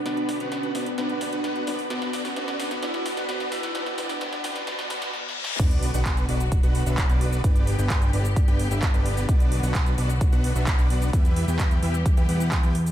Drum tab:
CC |------------------------------------------------|------------------------------------------------|------------------------------------------------|x-----------------------------------------------|
HH |x--x--o--x--x--x--o--x--x--x--o--x--x--x--o--o--|x--x--o--o--x--x--o--x--x--x--o--x--x--x--o--x--|x--x--o--o--x--x--o--x--x--x--o--x--------------|x--x--o--o--x--x--o--x--x--x--o--x--x--x--o--x--|
SH |------------------------------------------------|------------------------------------------------|------------------------------------------------|x--x-----x--x--x-----x--x--x-----x--x--x-----x--|
CP |------------------------------------------------|------------------------------------------------|------------------------------------------------|------------x-----------------------x-----------|
SD |o-----o-----o-----o-----o-----o-----o-----o-----|o--o--o--o--o--o--o--o--o--o--o--o--o--o--o--o--|o--o--o--o--o--o--o--o--o--o--o--o--o---o---o---|------------------------------------------------|
BD |------------------------------------------------|------------------------------------------------|------------------------------------------------|o-----------o-----------o-----------o-----------|

CC |------------------------------------------------|------------------------------------------------|------------------------------------------------|
HH |x--x--o--x--x--x--o--x--x--x--o--x--x--x--o--o--|x--x--o--o--x--x--o--x--x--x--o--x--x--x--o--x--|x--x--o--x--x--x--o--x--x--x--o--x--x--x--o--o--|
SH |x--x-----x--x--x-----x--x--x-----x--x--x-----x--|x--x-----x--x--x-----x--x--x-----x--x--x-----x--|x--x-----x--x--x-----x--x--x-----x--x--x-----x--|
CP |------------x-----------------------x-----------|------------x-----------------------x-----------|------------x-----------------------x-----------|
SD |------------------------------------------------|------------------------------------------------|------------------------------------------------|
BD |o-----------o-----------o-----------o-----------|o-----------o-----------o-----------o-----------|o-----------o-----------o-----------o-----------|